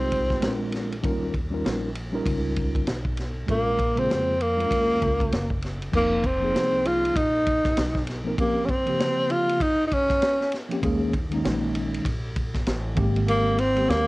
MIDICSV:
0, 0, Header, 1, 5, 480
1, 0, Start_track
1, 0, Tempo, 612245
1, 811, Time_signature, 4, 2, 24, 8
1, 11033, End_track
2, 0, Start_track
2, 0, Title_t, "Tenor saxophone"
2, 0, Program_c, 0, 66
2, 0, Note_on_c, 0, 60, 86
2, 547, Note_off_c, 0, 60, 0
2, 2745, Note_on_c, 0, 58, 94
2, 3125, Note_on_c, 0, 60, 89
2, 3137, Note_off_c, 0, 58, 0
2, 3462, Note_on_c, 0, 58, 100
2, 3474, Note_off_c, 0, 60, 0
2, 4417, Note_off_c, 0, 58, 0
2, 4671, Note_on_c, 0, 58, 91
2, 4907, Note_on_c, 0, 60, 96
2, 4918, Note_off_c, 0, 58, 0
2, 5387, Note_on_c, 0, 65, 99
2, 5398, Note_off_c, 0, 60, 0
2, 5619, Note_on_c, 0, 63, 98
2, 5631, Note_off_c, 0, 65, 0
2, 6335, Note_off_c, 0, 63, 0
2, 6582, Note_on_c, 0, 58, 87
2, 6782, Note_on_c, 0, 61, 68
2, 6794, Note_off_c, 0, 58, 0
2, 6824, Note_on_c, 0, 60, 106
2, 6836, Note_off_c, 0, 61, 0
2, 7302, Note_on_c, 0, 65, 99
2, 7313, Note_off_c, 0, 60, 0
2, 7542, Note_on_c, 0, 63, 96
2, 7554, Note_off_c, 0, 65, 0
2, 7732, Note_off_c, 0, 63, 0
2, 7739, Note_on_c, 0, 63, 69
2, 7789, Note_on_c, 0, 61, 100
2, 7800, Note_off_c, 0, 63, 0
2, 8260, Note_off_c, 0, 61, 0
2, 10420, Note_on_c, 0, 58, 106
2, 10656, Note_on_c, 0, 60, 111
2, 10668, Note_off_c, 0, 58, 0
2, 10894, Note_on_c, 0, 58, 108
2, 10905, Note_off_c, 0, 60, 0
2, 11033, Note_off_c, 0, 58, 0
2, 11033, End_track
3, 0, Start_track
3, 0, Title_t, "Tine electric piano"
3, 0, Program_c, 1, 4
3, 0, Note_on_c, 1, 56, 68
3, 0, Note_on_c, 1, 63, 62
3, 0, Note_on_c, 1, 65, 63
3, 0, Note_on_c, 1, 67, 63
3, 0, Note_on_c, 1, 72, 81
3, 307, Note_off_c, 1, 56, 0
3, 316, Note_on_c, 1, 56, 74
3, 320, Note_off_c, 1, 63, 0
3, 321, Note_on_c, 1, 60, 66
3, 323, Note_off_c, 1, 65, 0
3, 327, Note_off_c, 1, 67, 0
3, 329, Note_off_c, 1, 72, 0
3, 329, Note_on_c, 1, 62, 62
3, 335, Note_on_c, 1, 65, 61
3, 341, Note_on_c, 1, 70, 75
3, 725, Note_off_c, 1, 56, 0
3, 728, Note_off_c, 1, 60, 0
3, 732, Note_off_c, 1, 62, 0
3, 735, Note_off_c, 1, 65, 0
3, 738, Note_off_c, 1, 70, 0
3, 800, Note_on_c, 1, 55, 75
3, 806, Note_on_c, 1, 61, 84
3, 812, Note_on_c, 1, 63, 70
3, 819, Note_on_c, 1, 65, 78
3, 825, Note_on_c, 1, 70, 98
3, 1030, Note_off_c, 1, 55, 0
3, 1033, Note_off_c, 1, 61, 0
3, 1036, Note_off_c, 1, 63, 0
3, 1040, Note_off_c, 1, 65, 0
3, 1043, Note_off_c, 1, 70, 0
3, 1180, Note_on_c, 1, 55, 78
3, 1187, Note_on_c, 1, 61, 64
3, 1193, Note_on_c, 1, 63, 68
3, 1200, Note_on_c, 1, 65, 68
3, 1207, Note_on_c, 1, 70, 83
3, 1472, Note_off_c, 1, 55, 0
3, 1475, Note_off_c, 1, 61, 0
3, 1478, Note_off_c, 1, 63, 0
3, 1482, Note_off_c, 1, 65, 0
3, 1485, Note_off_c, 1, 70, 0
3, 1660, Note_on_c, 1, 55, 80
3, 1667, Note_on_c, 1, 61, 75
3, 1673, Note_on_c, 1, 63, 81
3, 1680, Note_on_c, 1, 65, 81
3, 1687, Note_on_c, 1, 70, 99
3, 2237, Note_off_c, 1, 55, 0
3, 2240, Note_off_c, 1, 61, 0
3, 2243, Note_off_c, 1, 63, 0
3, 2247, Note_off_c, 1, 65, 0
3, 2250, Note_off_c, 1, 70, 0
3, 2717, Note_on_c, 1, 56, 71
3, 2723, Note_on_c, 1, 58, 63
3, 2729, Note_on_c, 1, 61, 62
3, 2736, Note_on_c, 1, 65, 63
3, 2743, Note_on_c, 1, 70, 79
3, 2949, Note_off_c, 1, 56, 0
3, 2952, Note_off_c, 1, 58, 0
3, 2955, Note_off_c, 1, 61, 0
3, 2959, Note_off_c, 1, 65, 0
3, 2962, Note_off_c, 1, 70, 0
3, 3097, Note_on_c, 1, 56, 62
3, 3105, Note_on_c, 1, 58, 65
3, 3110, Note_on_c, 1, 49, 62
3, 3118, Note_on_c, 1, 65, 56
3, 3125, Note_on_c, 1, 68, 78
3, 3390, Note_off_c, 1, 56, 0
3, 3394, Note_off_c, 1, 58, 0
3, 3397, Note_off_c, 1, 49, 0
3, 3401, Note_off_c, 1, 65, 0
3, 3404, Note_off_c, 1, 68, 0
3, 3581, Note_on_c, 1, 56, 73
3, 3588, Note_on_c, 1, 58, 66
3, 3595, Note_on_c, 1, 60, 51
3, 3602, Note_on_c, 1, 65, 70
3, 3609, Note_on_c, 1, 70, 86
3, 3636, Note_off_c, 1, 60, 0
3, 3645, Note_on_c, 1, 61, 62
3, 4157, Note_off_c, 1, 56, 0
3, 4161, Note_off_c, 1, 58, 0
3, 4168, Note_off_c, 1, 65, 0
3, 4171, Note_off_c, 1, 70, 0
3, 4190, Note_off_c, 1, 61, 0
3, 4640, Note_on_c, 1, 53, 67
3, 4648, Note_on_c, 1, 58, 70
3, 4654, Note_on_c, 1, 60, 66
3, 4661, Note_on_c, 1, 63, 64
3, 4666, Note_on_c, 1, 70, 84
3, 4870, Note_off_c, 1, 53, 0
3, 4874, Note_off_c, 1, 58, 0
3, 4878, Note_off_c, 1, 60, 0
3, 4881, Note_off_c, 1, 63, 0
3, 4884, Note_off_c, 1, 70, 0
3, 5019, Note_on_c, 1, 53, 62
3, 5025, Note_on_c, 1, 58, 59
3, 5031, Note_on_c, 1, 60, 55
3, 5038, Note_on_c, 1, 63, 57
3, 5045, Note_on_c, 1, 68, 72
3, 5597, Note_off_c, 1, 53, 0
3, 5599, Note_off_c, 1, 58, 0
3, 5602, Note_off_c, 1, 60, 0
3, 5606, Note_off_c, 1, 63, 0
3, 5609, Note_off_c, 1, 68, 0
3, 6462, Note_on_c, 1, 53, 75
3, 6466, Note_on_c, 1, 58, 67
3, 6474, Note_on_c, 1, 60, 72
3, 6481, Note_on_c, 1, 63, 67
3, 6487, Note_on_c, 1, 70, 84
3, 6528, Note_off_c, 1, 53, 0
3, 6530, Note_off_c, 1, 58, 0
3, 6534, Note_off_c, 1, 60, 0
3, 6538, Note_off_c, 1, 63, 0
3, 6541, Note_off_c, 1, 70, 0
3, 6559, Note_on_c, 1, 53, 67
3, 6566, Note_on_c, 1, 58, 67
3, 6572, Note_on_c, 1, 60, 66
3, 6579, Note_on_c, 1, 61, 68
3, 6586, Note_on_c, 1, 67, 79
3, 6790, Note_off_c, 1, 53, 0
3, 6793, Note_off_c, 1, 58, 0
3, 6797, Note_off_c, 1, 60, 0
3, 6800, Note_off_c, 1, 61, 0
3, 6804, Note_off_c, 1, 67, 0
3, 6942, Note_on_c, 1, 53, 71
3, 6950, Note_on_c, 1, 58, 65
3, 6955, Note_on_c, 1, 60, 61
3, 6962, Note_on_c, 1, 49, 60
3, 6968, Note_on_c, 1, 67, 75
3, 7518, Note_off_c, 1, 53, 0
3, 7522, Note_off_c, 1, 58, 0
3, 7525, Note_off_c, 1, 60, 0
3, 7528, Note_off_c, 1, 49, 0
3, 7531, Note_off_c, 1, 67, 0
3, 8380, Note_on_c, 1, 53, 81
3, 8387, Note_on_c, 1, 58, 77
3, 8394, Note_on_c, 1, 60, 84
3, 8400, Note_on_c, 1, 61, 84
3, 8407, Note_on_c, 1, 67, 95
3, 8447, Note_off_c, 1, 53, 0
3, 8450, Note_off_c, 1, 58, 0
3, 8454, Note_off_c, 1, 60, 0
3, 8457, Note_off_c, 1, 61, 0
3, 8460, Note_off_c, 1, 67, 0
3, 8479, Note_on_c, 1, 51, 88
3, 8486, Note_on_c, 1, 56, 83
3, 8493, Note_on_c, 1, 58, 86
3, 8499, Note_on_c, 1, 61, 88
3, 8505, Note_on_c, 1, 68, 101
3, 8710, Note_off_c, 1, 51, 0
3, 8713, Note_off_c, 1, 56, 0
3, 8717, Note_off_c, 1, 58, 0
3, 8720, Note_off_c, 1, 61, 0
3, 8723, Note_off_c, 1, 68, 0
3, 8861, Note_on_c, 1, 51, 79
3, 8868, Note_on_c, 1, 56, 75
3, 8874, Note_on_c, 1, 58, 71
3, 8881, Note_on_c, 1, 61, 76
3, 8887, Note_on_c, 1, 63, 93
3, 9437, Note_off_c, 1, 51, 0
3, 9441, Note_off_c, 1, 56, 0
3, 9444, Note_off_c, 1, 58, 0
3, 9447, Note_off_c, 1, 61, 0
3, 9451, Note_off_c, 1, 63, 0
3, 10155, Note_on_c, 1, 51, 89
3, 10162, Note_on_c, 1, 56, 88
3, 10169, Note_on_c, 1, 58, 84
3, 10176, Note_on_c, 1, 60, 86
3, 10182, Note_on_c, 1, 67, 100
3, 10643, Note_off_c, 1, 51, 0
3, 10647, Note_off_c, 1, 56, 0
3, 10650, Note_off_c, 1, 58, 0
3, 10654, Note_off_c, 1, 60, 0
3, 10657, Note_off_c, 1, 67, 0
3, 10778, Note_on_c, 1, 51, 62
3, 10785, Note_on_c, 1, 56, 59
3, 10792, Note_on_c, 1, 58, 59
3, 10799, Note_on_c, 1, 59, 49
3, 10805, Note_on_c, 1, 67, 75
3, 10838, Note_off_c, 1, 59, 0
3, 10850, Note_on_c, 1, 60, 66
3, 11033, Note_off_c, 1, 51, 0
3, 11033, Note_off_c, 1, 56, 0
3, 11033, Note_off_c, 1, 58, 0
3, 11033, Note_off_c, 1, 60, 0
3, 11033, Note_off_c, 1, 67, 0
3, 11033, End_track
4, 0, Start_track
4, 0, Title_t, "Upright bass"
4, 0, Program_c, 2, 32
4, 0, Note_on_c, 2, 36, 80
4, 306, Note_off_c, 2, 36, 0
4, 332, Note_on_c, 2, 34, 88
4, 788, Note_off_c, 2, 34, 0
4, 813, Note_on_c, 2, 39, 97
4, 1268, Note_off_c, 2, 39, 0
4, 1294, Note_on_c, 2, 34, 90
4, 1748, Note_off_c, 2, 34, 0
4, 1769, Note_on_c, 2, 37, 75
4, 2226, Note_off_c, 2, 37, 0
4, 2254, Note_on_c, 2, 35, 89
4, 2709, Note_off_c, 2, 35, 0
4, 2733, Note_on_c, 2, 34, 96
4, 3188, Note_off_c, 2, 34, 0
4, 3214, Note_on_c, 2, 41, 96
4, 3669, Note_off_c, 2, 41, 0
4, 3692, Note_on_c, 2, 39, 76
4, 3920, Note_off_c, 2, 39, 0
4, 3936, Note_on_c, 2, 37, 86
4, 4162, Note_off_c, 2, 37, 0
4, 4176, Note_on_c, 2, 30, 85
4, 4630, Note_off_c, 2, 30, 0
4, 4652, Note_on_c, 2, 29, 88
4, 5108, Note_off_c, 2, 29, 0
4, 5132, Note_on_c, 2, 36, 79
4, 5588, Note_off_c, 2, 36, 0
4, 5612, Note_on_c, 2, 34, 79
4, 6068, Note_off_c, 2, 34, 0
4, 6095, Note_on_c, 2, 35, 91
4, 6549, Note_off_c, 2, 35, 0
4, 8491, Note_on_c, 2, 39, 107
4, 8947, Note_off_c, 2, 39, 0
4, 8973, Note_on_c, 2, 34, 95
4, 9428, Note_off_c, 2, 34, 0
4, 9450, Note_on_c, 2, 34, 86
4, 9906, Note_off_c, 2, 34, 0
4, 9932, Note_on_c, 2, 33, 89
4, 10159, Note_off_c, 2, 33, 0
4, 10171, Note_on_c, 2, 32, 112
4, 10860, Note_off_c, 2, 32, 0
4, 10892, Note_on_c, 2, 39, 105
4, 11033, Note_off_c, 2, 39, 0
4, 11033, End_track
5, 0, Start_track
5, 0, Title_t, "Drums"
5, 91, Note_on_c, 9, 51, 57
5, 94, Note_on_c, 9, 36, 70
5, 170, Note_off_c, 9, 51, 0
5, 172, Note_off_c, 9, 36, 0
5, 237, Note_on_c, 9, 36, 83
5, 237, Note_on_c, 9, 38, 33
5, 316, Note_off_c, 9, 36, 0
5, 316, Note_off_c, 9, 38, 0
5, 329, Note_on_c, 9, 44, 46
5, 329, Note_on_c, 9, 51, 70
5, 335, Note_on_c, 9, 38, 103
5, 408, Note_off_c, 9, 44, 0
5, 408, Note_off_c, 9, 51, 0
5, 413, Note_off_c, 9, 38, 0
5, 566, Note_on_c, 9, 51, 51
5, 583, Note_on_c, 9, 38, 30
5, 644, Note_off_c, 9, 51, 0
5, 662, Note_off_c, 9, 38, 0
5, 723, Note_on_c, 9, 51, 34
5, 802, Note_off_c, 9, 51, 0
5, 812, Note_on_c, 9, 36, 115
5, 815, Note_on_c, 9, 51, 61
5, 890, Note_off_c, 9, 36, 0
5, 894, Note_off_c, 9, 51, 0
5, 1049, Note_on_c, 9, 36, 80
5, 1050, Note_on_c, 9, 51, 45
5, 1128, Note_off_c, 9, 36, 0
5, 1128, Note_off_c, 9, 51, 0
5, 1300, Note_on_c, 9, 38, 94
5, 1301, Note_on_c, 9, 44, 47
5, 1301, Note_on_c, 9, 51, 70
5, 1379, Note_off_c, 9, 38, 0
5, 1379, Note_off_c, 9, 44, 0
5, 1379, Note_off_c, 9, 51, 0
5, 1530, Note_on_c, 9, 51, 52
5, 1609, Note_off_c, 9, 51, 0
5, 1768, Note_on_c, 9, 36, 91
5, 1773, Note_on_c, 9, 51, 73
5, 1847, Note_off_c, 9, 36, 0
5, 1851, Note_off_c, 9, 51, 0
5, 2009, Note_on_c, 9, 51, 59
5, 2013, Note_on_c, 9, 36, 77
5, 2088, Note_off_c, 9, 51, 0
5, 2092, Note_off_c, 9, 36, 0
5, 2157, Note_on_c, 9, 36, 86
5, 2161, Note_on_c, 9, 51, 41
5, 2235, Note_off_c, 9, 36, 0
5, 2240, Note_off_c, 9, 51, 0
5, 2250, Note_on_c, 9, 44, 46
5, 2250, Note_on_c, 9, 51, 64
5, 2255, Note_on_c, 9, 38, 103
5, 2328, Note_off_c, 9, 44, 0
5, 2328, Note_off_c, 9, 51, 0
5, 2333, Note_off_c, 9, 38, 0
5, 2391, Note_on_c, 9, 36, 82
5, 2470, Note_off_c, 9, 36, 0
5, 2487, Note_on_c, 9, 51, 51
5, 2504, Note_on_c, 9, 38, 30
5, 2565, Note_off_c, 9, 51, 0
5, 2582, Note_off_c, 9, 38, 0
5, 2731, Note_on_c, 9, 36, 94
5, 2734, Note_on_c, 9, 51, 62
5, 2810, Note_off_c, 9, 36, 0
5, 2813, Note_off_c, 9, 51, 0
5, 2970, Note_on_c, 9, 36, 85
5, 2973, Note_on_c, 9, 51, 50
5, 3048, Note_off_c, 9, 36, 0
5, 3051, Note_off_c, 9, 51, 0
5, 3113, Note_on_c, 9, 51, 33
5, 3191, Note_off_c, 9, 51, 0
5, 3222, Note_on_c, 9, 38, 98
5, 3223, Note_on_c, 9, 44, 46
5, 3223, Note_on_c, 9, 51, 57
5, 3301, Note_off_c, 9, 38, 0
5, 3301, Note_off_c, 9, 44, 0
5, 3301, Note_off_c, 9, 51, 0
5, 3454, Note_on_c, 9, 51, 50
5, 3532, Note_off_c, 9, 51, 0
5, 3607, Note_on_c, 9, 51, 40
5, 3686, Note_off_c, 9, 51, 0
5, 3691, Note_on_c, 9, 36, 89
5, 3698, Note_on_c, 9, 51, 80
5, 3770, Note_off_c, 9, 36, 0
5, 3776, Note_off_c, 9, 51, 0
5, 3935, Note_on_c, 9, 51, 54
5, 3936, Note_on_c, 9, 36, 82
5, 4013, Note_off_c, 9, 51, 0
5, 4014, Note_off_c, 9, 36, 0
5, 4079, Note_on_c, 9, 36, 91
5, 4085, Note_on_c, 9, 51, 43
5, 4157, Note_off_c, 9, 36, 0
5, 4163, Note_off_c, 9, 51, 0
5, 4174, Note_on_c, 9, 44, 47
5, 4174, Note_on_c, 9, 51, 72
5, 4179, Note_on_c, 9, 38, 90
5, 4252, Note_off_c, 9, 44, 0
5, 4252, Note_off_c, 9, 51, 0
5, 4258, Note_off_c, 9, 38, 0
5, 4314, Note_on_c, 9, 36, 80
5, 4392, Note_off_c, 9, 36, 0
5, 4408, Note_on_c, 9, 51, 51
5, 4425, Note_on_c, 9, 38, 28
5, 4486, Note_off_c, 9, 51, 0
5, 4504, Note_off_c, 9, 38, 0
5, 4562, Note_on_c, 9, 51, 36
5, 4640, Note_off_c, 9, 51, 0
5, 4652, Note_on_c, 9, 36, 111
5, 4654, Note_on_c, 9, 49, 88
5, 4731, Note_off_c, 9, 36, 0
5, 4732, Note_off_c, 9, 49, 0
5, 4891, Note_on_c, 9, 36, 84
5, 4891, Note_on_c, 9, 51, 50
5, 4969, Note_off_c, 9, 36, 0
5, 4969, Note_off_c, 9, 51, 0
5, 5141, Note_on_c, 9, 38, 96
5, 5141, Note_on_c, 9, 44, 48
5, 5141, Note_on_c, 9, 51, 73
5, 5219, Note_off_c, 9, 38, 0
5, 5220, Note_off_c, 9, 44, 0
5, 5220, Note_off_c, 9, 51, 0
5, 5373, Note_on_c, 9, 51, 53
5, 5451, Note_off_c, 9, 51, 0
5, 5526, Note_on_c, 9, 51, 44
5, 5604, Note_off_c, 9, 51, 0
5, 5611, Note_on_c, 9, 36, 95
5, 5616, Note_on_c, 9, 51, 73
5, 5689, Note_off_c, 9, 36, 0
5, 5694, Note_off_c, 9, 51, 0
5, 5852, Note_on_c, 9, 51, 58
5, 5855, Note_on_c, 9, 36, 80
5, 5931, Note_off_c, 9, 51, 0
5, 5933, Note_off_c, 9, 36, 0
5, 5998, Note_on_c, 9, 36, 96
5, 5998, Note_on_c, 9, 38, 35
5, 6002, Note_on_c, 9, 51, 48
5, 6076, Note_off_c, 9, 36, 0
5, 6076, Note_off_c, 9, 38, 0
5, 6081, Note_off_c, 9, 51, 0
5, 6090, Note_on_c, 9, 44, 51
5, 6090, Note_on_c, 9, 51, 77
5, 6096, Note_on_c, 9, 38, 108
5, 6169, Note_off_c, 9, 44, 0
5, 6169, Note_off_c, 9, 51, 0
5, 6174, Note_off_c, 9, 38, 0
5, 6232, Note_on_c, 9, 36, 77
5, 6236, Note_on_c, 9, 38, 31
5, 6310, Note_off_c, 9, 36, 0
5, 6315, Note_off_c, 9, 38, 0
5, 6326, Note_on_c, 9, 51, 55
5, 6343, Note_on_c, 9, 38, 34
5, 6404, Note_off_c, 9, 51, 0
5, 6421, Note_off_c, 9, 38, 0
5, 6571, Note_on_c, 9, 36, 121
5, 6573, Note_on_c, 9, 51, 65
5, 6650, Note_off_c, 9, 36, 0
5, 6651, Note_off_c, 9, 51, 0
5, 6810, Note_on_c, 9, 36, 85
5, 6811, Note_on_c, 9, 51, 46
5, 6888, Note_off_c, 9, 36, 0
5, 6889, Note_off_c, 9, 51, 0
5, 6950, Note_on_c, 9, 51, 38
5, 7028, Note_off_c, 9, 51, 0
5, 7058, Note_on_c, 9, 38, 102
5, 7058, Note_on_c, 9, 44, 53
5, 7058, Note_on_c, 9, 51, 71
5, 7136, Note_off_c, 9, 38, 0
5, 7137, Note_off_c, 9, 44, 0
5, 7137, Note_off_c, 9, 51, 0
5, 7289, Note_on_c, 9, 51, 51
5, 7368, Note_off_c, 9, 51, 0
5, 7442, Note_on_c, 9, 51, 45
5, 7521, Note_off_c, 9, 51, 0
5, 7529, Note_on_c, 9, 36, 96
5, 7533, Note_on_c, 9, 51, 77
5, 7608, Note_off_c, 9, 36, 0
5, 7612, Note_off_c, 9, 51, 0
5, 7773, Note_on_c, 9, 51, 60
5, 7775, Note_on_c, 9, 36, 78
5, 7852, Note_off_c, 9, 51, 0
5, 7853, Note_off_c, 9, 36, 0
5, 7917, Note_on_c, 9, 36, 95
5, 7917, Note_on_c, 9, 38, 37
5, 7922, Note_on_c, 9, 51, 51
5, 7996, Note_off_c, 9, 36, 0
5, 7996, Note_off_c, 9, 38, 0
5, 8000, Note_off_c, 9, 51, 0
5, 8011, Note_on_c, 9, 44, 48
5, 8011, Note_on_c, 9, 51, 69
5, 8016, Note_on_c, 9, 38, 105
5, 8089, Note_off_c, 9, 44, 0
5, 8089, Note_off_c, 9, 51, 0
5, 8095, Note_off_c, 9, 38, 0
5, 8159, Note_on_c, 9, 38, 29
5, 8237, Note_off_c, 9, 38, 0
5, 8245, Note_on_c, 9, 51, 51
5, 8262, Note_on_c, 9, 38, 33
5, 8323, Note_off_c, 9, 51, 0
5, 8341, Note_off_c, 9, 38, 0
5, 8398, Note_on_c, 9, 51, 41
5, 8476, Note_off_c, 9, 51, 0
5, 8490, Note_on_c, 9, 36, 110
5, 8492, Note_on_c, 9, 51, 67
5, 8569, Note_off_c, 9, 36, 0
5, 8570, Note_off_c, 9, 51, 0
5, 8729, Note_on_c, 9, 36, 88
5, 8730, Note_on_c, 9, 51, 50
5, 8807, Note_off_c, 9, 36, 0
5, 8808, Note_off_c, 9, 51, 0
5, 8871, Note_on_c, 9, 51, 37
5, 8949, Note_off_c, 9, 51, 0
5, 8978, Note_on_c, 9, 38, 97
5, 8978, Note_on_c, 9, 44, 50
5, 8978, Note_on_c, 9, 51, 77
5, 9057, Note_off_c, 9, 38, 0
5, 9057, Note_off_c, 9, 44, 0
5, 9057, Note_off_c, 9, 51, 0
5, 9211, Note_on_c, 9, 51, 53
5, 9289, Note_off_c, 9, 51, 0
5, 9363, Note_on_c, 9, 51, 45
5, 9442, Note_off_c, 9, 51, 0
5, 9448, Note_on_c, 9, 36, 94
5, 9453, Note_on_c, 9, 51, 76
5, 9527, Note_off_c, 9, 36, 0
5, 9531, Note_off_c, 9, 51, 0
5, 9690, Note_on_c, 9, 51, 60
5, 9693, Note_on_c, 9, 36, 82
5, 9769, Note_off_c, 9, 51, 0
5, 9771, Note_off_c, 9, 36, 0
5, 9837, Note_on_c, 9, 36, 84
5, 9839, Note_on_c, 9, 38, 37
5, 9843, Note_on_c, 9, 51, 49
5, 9915, Note_off_c, 9, 36, 0
5, 9917, Note_off_c, 9, 38, 0
5, 9922, Note_off_c, 9, 51, 0
5, 9930, Note_on_c, 9, 44, 49
5, 9930, Note_on_c, 9, 51, 66
5, 9936, Note_on_c, 9, 38, 102
5, 10009, Note_off_c, 9, 44, 0
5, 10009, Note_off_c, 9, 51, 0
5, 10014, Note_off_c, 9, 38, 0
5, 10166, Note_on_c, 9, 51, 58
5, 10171, Note_on_c, 9, 36, 103
5, 10244, Note_off_c, 9, 51, 0
5, 10249, Note_off_c, 9, 36, 0
5, 10319, Note_on_c, 9, 51, 36
5, 10397, Note_off_c, 9, 51, 0
5, 10414, Note_on_c, 9, 51, 66
5, 10492, Note_off_c, 9, 51, 0
5, 10650, Note_on_c, 9, 51, 47
5, 10728, Note_off_c, 9, 51, 0
5, 10791, Note_on_c, 9, 51, 35
5, 10870, Note_off_c, 9, 51, 0
5, 10900, Note_on_c, 9, 38, 101
5, 10900, Note_on_c, 9, 44, 52
5, 10900, Note_on_c, 9, 51, 74
5, 10978, Note_off_c, 9, 38, 0
5, 10978, Note_off_c, 9, 44, 0
5, 10978, Note_off_c, 9, 51, 0
5, 11033, End_track
0, 0, End_of_file